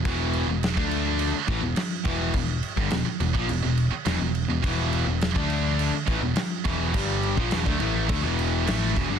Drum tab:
CC |x-x-x-x-x-x-x-x-|x-x-x-x-x-x-x-x-|x-x-x-x-x-x-x-x-|x-x-x-x-x-x-x-x-|
SD |----o-------o---|----o-------o---|----o-------o---|----o-------o---|
BD |o----o----o---o-|o--o---o--------|o----o----o---o-|o--o-o--o-----o-|